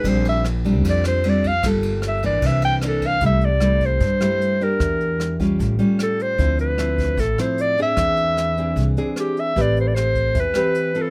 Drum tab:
RD |xxxxxxxx|xxxxxxxx|--------|--------|
HH |--------|--------|xxxxxxxx|xxxxxxxx|
SD |--r--r--|r-r---r-|--r--r--|r-r---r-|
BD |o--oo--o|o--oo--o|o--oo---|o--oo---|

RD |--------|--------|--------|
HH |xxxxxxxx|xxxxxxxx|xxxxxxxx|
SD |--r--r--|r-r---r-|--r--r--|
BD |o--oo---|o---o---|o--oo---|